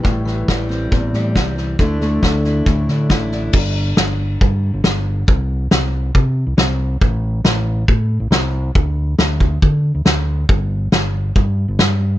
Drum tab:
CC |--------|--------|x-------|--------|
SD |oooooooo|oooooooo|--o---o-|--o---o-|
BD |o-o-o-o-|o-o-o-o-|o---o---|o---o---|

CC |--------|--------|--------|
SD |--o---o-|--o---o-|--o---o-|
BD |o---o---|o--oo---|o---o---|